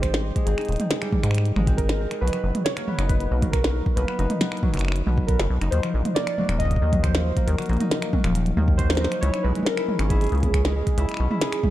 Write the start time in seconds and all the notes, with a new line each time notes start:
Already playing: G#1 G3 G#3 C4 D#4
0.02 C5, finger snap, kick, closed hi-hat
0.14 snare
0.36 G#3, kick, closed hi-hat
0.45 G#1 C4 G#4, closed hi-hat
0.58 D#4, finger snap, closed hi-hat
0.61 closed hi-hat
0.65 closed hi-hat
0.69 D#1, closed hi-hat
0.72 closed hi-hat
0.76 C4, closed hi-hat
0.80 closed hi-hat, mid tom
0.91 G#3, snare, closed hi-hat
1.01 G3, finger snap, closed hi-hat
1.12 G3, kick, mid tom
1.23 G#2, finger snap, closed hi-hat
1.31 finger snap, closed hi-hat
1.38 finger snap
1.45 closed hi-hat
1.56 G#1 G#3, finger snap, mid tom
1.67 C4, kick, closed hi-hat
1.77 D#4 A#4, kick, closed hi-hat
1.89 finger snap, snare, closed hi-hat
2.00 C4
2.11 G#3, finger snap, closed hi-hat
2.21 B1 F#3 B4
2.28 closed hi-hat
2.33 F#3, finger snap, closed hi-hat
2.44 F#1
2.55 closed hi-hat, mid tom
2.65 C#5, snare, closed hi-hat
2.77 A#3, finger snap, closed hi-hat
2.88 B3, mid tom
2.98 F#1 D#4, finger snap, closed hi-hat
3.08 B4, kick, closed hi-hat
3.20 B3, closed hi-hat
3.31 B1 A#3
3.42 F#3, kick, closed hi-hat, mid tom
3.52 F#3 A#4, finger snap, kick, closed hi-hat
3.64 snare
3.86 kick
3.96 B1 A#3 B4, closed hi-hat
4.08 B3, finger snap
4.19 F#1 D#4, closed hi-hat
4.30 closed hi-hat, mid tom
4.41 B3, snare, closed hi-hat
4.52 A#3, finger snap
4.57 closed hi-hat
4.63 F#3, kick, mid tom
4.74 F#1 F#3, finger snap, closed hi-hat
4.77 finger snap, closed hi-hat
4.81 finger snap
4.85 finger snap
4.88 finger snap
4.92 finger snap, closed hi-hat
5.07 B1 B3, mid tom
5.18 kick
5.27 B3 A#4, kick, closed hi-hat
5.39 F#1, finger snap, snare, closed hi-hat
5.50 B1
5.61 F#1 D#4, finger snap, closed hi-hat
5.71 D#2 F#3 C5, closed hi-hat
5.83 F3, finger snap, closed hi-hat
5.94 A#1 F3
6.05 closed hi-hat, mid tom
6.15 A#3 D5, snare, closed hi-hat
6.27 finger snap, closed hi-hat
6.38 F#3, mid tom
6.41 mid tom
6.43 mid tom
6.46 D#1 A#3, finger snap, closed hi-hat, mid tom
6.58 D#4 D#5, kick, closed hi-hat
6.65 kick
6.71 kick, closed hi-hat
6.76 kick
6.82 D#2 A#3
6.93 F#3, kick, closed hi-hat, mid tom
7.03 F3 C5, finger snap, kick, closed hi-hat
7.15 F3, snare
7.37 A#3, kick, closed hi-hat
7.46 D#2 A#4, closed hi-hat
7.58 F#3, finger snap, closed hi-hat
7.62 closed hi-hat
7.66 A#1, closed hi-hat
7.69 A#3, closed hi-hat
7.73 closed hi-hat
7.77 D#4, closed hi-hat
7.80 closed hi-hat, mid tom
7.91 snare, closed hi-hat
8.02 A#3, finger snap, closed hi-hat
8.13 F#3, kick, mid tom
8.24 D#1 F3, finger snap, closed hi-hat
8.35 F3, closed hi-hat
8.46 closed hi-hat
8.57 D#2 A#3, mid tom
8.68 kick
8.77 F#3 C5, kick, closed hi-hat
8.90 A#3, finger snap, snare, closed hi-hat
8.93 closed hi-hat
8.95 snare, closed hi-hat
8.98 D#4, closed hi-hat
9.04 snare
9.12 finger snap, closed hi-hat
9.21 C#2 E4 C#5, closed hi-hat
9.34 C#4, finger snap, closed hi-hat
9.43 B1 G#3 B4
9.55 G#3, closed hi-hat, mid tom
9.59 mid tom
9.63 A#4, snare, closed hi-hat, mid tom
9.77 E4, finger snap, closed hi-hat
9.88 mid tom
9.99 G#1 C#4, finger snap, closed hi-hat
10.09 E4 G#4, kick, closed hi-hat
10.21 G#4, closed hi-hat
10.24 closed hi-hat
10.27 closed hi-hat
10.29 C#2, closed hi-hat
10.35 closed hi-hat
10.38 closed hi-hat
10.40 kick, closed hi-hat
10.43 E4, closed hi-hat, mid tom
10.54 C#4, finger snap, kick, closed hi-hat
10.65 G#3, snare
10.76 G#3
10.87 kick, closed hi-hat
10.98 C#2 E4, closed hi-hat
11.09 finger snap, closed hi-hat
11.12 finger snap
11.14 finger snap
11.17 B1 C#4, finger snap
11.31 E4, mid tom
11.41 G#4, snare, closed hi-hat
11.52 finger snap, closed hi-hat
11.63 E4, kick, mid tom